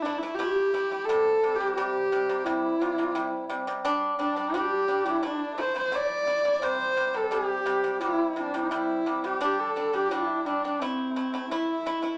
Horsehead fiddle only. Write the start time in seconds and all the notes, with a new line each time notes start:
0.02 D4
0.19 E4
0.35 G4
1.05 A4
1.56 G4
1.76 G4
2.45 E4
4.22 D4
4.58 G4
5.10 E4
5.26 D4
5.61 C5
5.77 C5
5.96 D5
6.64 C5
7.17 A4
7.32 G4
8.02 E4
8.33 E4
8.39 D4
8.56 E4
9.26 G4
9.43 G4
9.60 A4
9.95 G4
10.11 E4
10.46 D4
10.80 C4
11.51 E4